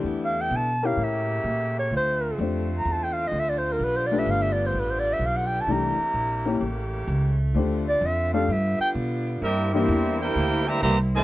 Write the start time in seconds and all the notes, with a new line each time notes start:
Already playing: E3 G3 A3 D4 G4
0.04 E2 D3 B3 E4
0.25 F5
0.41 G5
0.51 B2
0.56 A5
0.83 C#4 E4 G4 A#4 F5
0.97 A2 C#3 A3 A#3 G4
1.04 E5
1.44 A#2
1.79 C#5
1.91 D2 D3 C4 F4
1.97 C5
2.38 F2 A3 D4 G4 C5
2.78 A#5
2.85 E2
2.92 A5
3.03 G5
3.13 F5
3.28 D#5
3.32 D2
3.39 E5
3.49 D5
3.58 C5
3.72 A#4
3.78 B1 G3 B3
3.84 B4
3.96 C5
4.06 D5
4.11 A3 D4 G4 B4
4.19 E5
4.26 G1
4.31 F5
4.42 E5
4.52 D5
4.66 C5
4.72 A1
4.79 B4
4.90 C5
4.99 D5
5.13 E5
5.19 B1
5.26 F5
5.37 F#5
5.46 G5
5.61 A5
5.66 C2 C3 E3 A3 A#3 D4 E4 G4
5.72 A#5
5.98 muted upright bass stroke
6.14 A#1
6.46 A#3 C#4 E4 G4
6.60 A1 C#3 A3 G4
7.07 C#2
7.54 D2 D3 A3 C4 D4 F4 G4 C5
7.89 D5
8.01 F2
8.06 E5
8.33 A3 D4 G4 A4 F5
8.48 G2 D3 G3 B3 F4
8.52 E5
8.79 G5, muted upright bass stroke
8.95 B2
9.41 G2 G3 A#3 C4 E4 G4 A#4 E5
9.73 E3 G3 A#3 C4 D4 E4 G4 A#4 E5
9.88 E2
10.20 A#3 E4 G4 A#4 C5 G5
10.35 D2
10.67 E3 G3 A#3 G4 C5 E5 A#5
10.82 C2 E3 G3 A#3 G4 C5 E5 A#5
11.15 C3 D#3 A3 F4 C5 D#5 A5